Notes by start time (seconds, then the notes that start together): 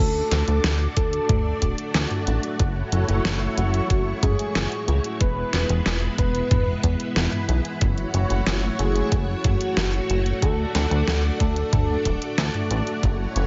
0.00 D2 A3 D4 F#4 A4 D5
0.31 D2, snare, closed hi-hat
0.48 D2, closed hi-hat
0.64 D2, snare, closed hi-hat
0.97 D2 A4, kick, closed hi-hat
1.13 closed hi-hat
1.29 D2, kick, closed hi-hat, mid tom
1.62 D1, kick, closed hi-hat
1.78 closed hi-hat
1.94 D2, snare, closed hi-hat
2.11 closed hi-hat, mid tom
2.27 A1, closed hi-hat
2.43 closed hi-hat
2.59 F#1 E4 C#5, kick, closed hi-hat
2.92 F#1, closed hi-hat
3.08 F#1, closed hi-hat
3.25 F#1, snare, closed hi-hat
3.58 F#1 F#4, closed hi-hat
3.74 closed hi-hat
3.90 F#1, kick, closed hi-hat
4.23 F#2 G#4, kick, closed hi-hat, mid tom
4.39 closed hi-hat
4.55 F#1, snare, closed hi-hat
4.72 closed hi-hat
4.88 C#2, closed hi-hat
5.04 closed hi-hat
5.20 E1 G#3 B3 E4 B4, kick, closed hi-hat
5.53 E1, snare, closed hi-hat
5.69 E1, closed hi-hat
5.86 E1, snare, closed hi-hat
6.18 E1 B4, kick, closed hi-hat
6.35 closed hi-hat
6.51 E1, kick, closed hi-hat, mid tom
6.83 E2, kick, closed hi-hat
7.00 closed hi-hat
7.16 E1, snare, closed hi-hat
7.32 closed hi-hat, mid tom
7.49 B1, closed hi-hat
7.65 closed hi-hat
7.81 F#1 A3 F#4 C#5, kick, closed hi-hat, mid tom
7.98 closed hi-hat
8.14 F#1, closed hi-hat
8.30 F#1, closed hi-hat
8.47 F#1, snare, closed hi-hat
8.79 F#1 G#4, closed hi-hat
8.96 closed hi-hat
9.12 F#1, kick, closed hi-hat
9.44 F#1 F#4, kick, closed hi-hat, mid tom
9.61 closed hi-hat
9.77 F#1, snare, closed hi-hat
9.93 closed hi-hat
10.10 F#1, closed hi-hat
10.26 closed hi-hat
10.42 D2 D4 A4 D5, kick, closed hi-hat
10.75 D2, snare, closed hi-hat
10.91 D2, closed hi-hat
11.07 D2, snare, closed hi-hat
11.40 D2 A4, kick, closed hi-hat
11.56 closed hi-hat
11.73 D2, kick, closed hi-hat, mid tom
12.05 D1, kick, closed hi-hat
12.22 closed hi-hat
12.38 D2, snare, closed hi-hat
12.54 closed hi-hat, mid tom
12.71 A1, closed hi-hat
12.87 closed hi-hat
13.03 F#1 E4 F#4 C#5, kick, closed hi-hat
13.36 F#1, closed hi-hat